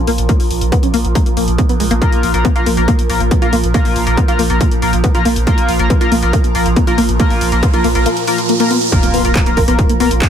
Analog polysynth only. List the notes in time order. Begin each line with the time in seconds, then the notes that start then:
2.02 A#3 F4 A#4
2.34 A#3 F4 A#4
2.56 A#3 F4 A#4
2.77 A#3 F4 A#4
3.10 A#3 F4 A#4
3.42 A#3 F4 A#4
3.74 A#3 F4 A#4
4.07 A#3 F4 A#4
4.28 A#3 F4 A#4
4.50 A#3 F4 A#4
4.82 A#3 F4 A#4
5.15 A#3 F4 A#4
5.47 A#3 F4 A#4
5.79 A#3 F4 A#4
6.01 A#3 F4 A#4
6.23 A#3 F4 A#4
6.55 A#3 F4 A#4
6.87 A#3 F4 A#4
7.20 A#3 F4 A#4
7.52 A#3 F4 A#4
7.74 A#3 F4 A#4
7.95 A#3 F4 A#4
8.28 A#3 F4 A#4
8.60 A#3 F4 A#4
8.92 A#3 F4 A#4
9.25 A#3 F4 A#4
9.46 A#3 F4 A#4
9.68 A#3 F4 A#4
10.00 A#3 F4 A#4